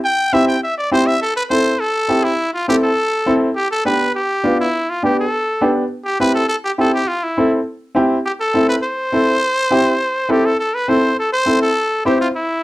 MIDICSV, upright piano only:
0, 0, Header, 1, 2, 480
1, 0, Start_track
1, 0, Tempo, 293112
1, 67, Time_signature, 4, 2, 24, 8
1, 20688, End_track
2, 0, Start_track
2, 0, Title_t, "Upright piano"
2, 0, Program_c, 0, 0
2, 536, Note_on_c, 0, 60, 81
2, 539, Note_on_c, 0, 64, 70
2, 549, Note_on_c, 0, 67, 85
2, 878, Note_off_c, 0, 60, 0
2, 880, Note_off_c, 0, 64, 0
2, 884, Note_off_c, 0, 67, 0
2, 1499, Note_on_c, 0, 60, 80
2, 1501, Note_on_c, 0, 64, 69
2, 1508, Note_on_c, 0, 67, 83
2, 1840, Note_off_c, 0, 60, 0
2, 1841, Note_off_c, 0, 64, 0
2, 1844, Note_off_c, 0, 67, 0
2, 2461, Note_on_c, 0, 60, 66
2, 2468, Note_on_c, 0, 64, 60
2, 2471, Note_on_c, 0, 69, 77
2, 2802, Note_off_c, 0, 60, 0
2, 2805, Note_off_c, 0, 64, 0
2, 2806, Note_off_c, 0, 69, 0
2, 3415, Note_on_c, 0, 60, 65
2, 3418, Note_on_c, 0, 64, 57
2, 3432, Note_on_c, 0, 67, 77
2, 3759, Note_off_c, 0, 60, 0
2, 3761, Note_off_c, 0, 64, 0
2, 3767, Note_off_c, 0, 67, 0
2, 4391, Note_on_c, 0, 60, 74
2, 4398, Note_on_c, 0, 64, 61
2, 4405, Note_on_c, 0, 69, 78
2, 4728, Note_off_c, 0, 60, 0
2, 4731, Note_off_c, 0, 64, 0
2, 4735, Note_off_c, 0, 69, 0
2, 5344, Note_on_c, 0, 60, 82
2, 5353, Note_on_c, 0, 64, 74
2, 5353, Note_on_c, 0, 69, 85
2, 5684, Note_off_c, 0, 60, 0
2, 5689, Note_off_c, 0, 64, 0
2, 5689, Note_off_c, 0, 69, 0
2, 6307, Note_on_c, 0, 62, 63
2, 6311, Note_on_c, 0, 59, 68
2, 6322, Note_on_c, 0, 67, 76
2, 6646, Note_off_c, 0, 62, 0
2, 6648, Note_off_c, 0, 59, 0
2, 6654, Note_off_c, 0, 67, 0
2, 7264, Note_on_c, 0, 62, 67
2, 7266, Note_on_c, 0, 59, 67
2, 7276, Note_on_c, 0, 65, 78
2, 7605, Note_off_c, 0, 62, 0
2, 7606, Note_off_c, 0, 59, 0
2, 7611, Note_off_c, 0, 65, 0
2, 8233, Note_on_c, 0, 62, 62
2, 8236, Note_on_c, 0, 59, 69
2, 8246, Note_on_c, 0, 67, 75
2, 8570, Note_off_c, 0, 62, 0
2, 8571, Note_off_c, 0, 59, 0
2, 8576, Note_off_c, 0, 67, 0
2, 9189, Note_on_c, 0, 59, 77
2, 9194, Note_on_c, 0, 62, 72
2, 9202, Note_on_c, 0, 67, 85
2, 9528, Note_off_c, 0, 59, 0
2, 9530, Note_off_c, 0, 62, 0
2, 9534, Note_off_c, 0, 67, 0
2, 10151, Note_on_c, 0, 64, 63
2, 10152, Note_on_c, 0, 60, 69
2, 10166, Note_on_c, 0, 67, 73
2, 10489, Note_off_c, 0, 60, 0
2, 10489, Note_off_c, 0, 64, 0
2, 10496, Note_off_c, 0, 67, 0
2, 11104, Note_on_c, 0, 64, 60
2, 11108, Note_on_c, 0, 60, 68
2, 11114, Note_on_c, 0, 67, 75
2, 11445, Note_off_c, 0, 64, 0
2, 11447, Note_off_c, 0, 60, 0
2, 11450, Note_off_c, 0, 67, 0
2, 12073, Note_on_c, 0, 64, 65
2, 12076, Note_on_c, 0, 60, 70
2, 12089, Note_on_c, 0, 69, 78
2, 12409, Note_off_c, 0, 64, 0
2, 12411, Note_off_c, 0, 60, 0
2, 12417, Note_off_c, 0, 69, 0
2, 13015, Note_on_c, 0, 60, 77
2, 13022, Note_on_c, 0, 64, 74
2, 13038, Note_on_c, 0, 67, 95
2, 13360, Note_off_c, 0, 60, 0
2, 13363, Note_off_c, 0, 64, 0
2, 13371, Note_off_c, 0, 67, 0
2, 13988, Note_on_c, 0, 60, 74
2, 13996, Note_on_c, 0, 64, 67
2, 14003, Note_on_c, 0, 69, 74
2, 14326, Note_off_c, 0, 60, 0
2, 14330, Note_off_c, 0, 64, 0
2, 14333, Note_off_c, 0, 69, 0
2, 14942, Note_on_c, 0, 60, 66
2, 14945, Note_on_c, 0, 64, 64
2, 14955, Note_on_c, 0, 69, 75
2, 15282, Note_off_c, 0, 60, 0
2, 15284, Note_off_c, 0, 64, 0
2, 15289, Note_off_c, 0, 69, 0
2, 15896, Note_on_c, 0, 60, 79
2, 15906, Note_on_c, 0, 64, 74
2, 15908, Note_on_c, 0, 67, 90
2, 16238, Note_off_c, 0, 60, 0
2, 16244, Note_off_c, 0, 64, 0
2, 16245, Note_off_c, 0, 67, 0
2, 16848, Note_on_c, 0, 60, 71
2, 16852, Note_on_c, 0, 64, 63
2, 16859, Note_on_c, 0, 69, 80
2, 17194, Note_off_c, 0, 60, 0
2, 17196, Note_off_c, 0, 64, 0
2, 17199, Note_off_c, 0, 69, 0
2, 17821, Note_on_c, 0, 60, 74
2, 17825, Note_on_c, 0, 64, 62
2, 17833, Note_on_c, 0, 69, 74
2, 18160, Note_off_c, 0, 60, 0
2, 18162, Note_off_c, 0, 64, 0
2, 18166, Note_off_c, 0, 69, 0
2, 18766, Note_on_c, 0, 60, 69
2, 18774, Note_on_c, 0, 64, 59
2, 18783, Note_on_c, 0, 69, 73
2, 19111, Note_off_c, 0, 60, 0
2, 19115, Note_off_c, 0, 64, 0
2, 19120, Note_off_c, 0, 69, 0
2, 19738, Note_on_c, 0, 60, 71
2, 19741, Note_on_c, 0, 64, 63
2, 19754, Note_on_c, 0, 72, 80
2, 20077, Note_off_c, 0, 60, 0
2, 20078, Note_off_c, 0, 64, 0
2, 20085, Note_off_c, 0, 72, 0
2, 20688, End_track
0, 0, End_of_file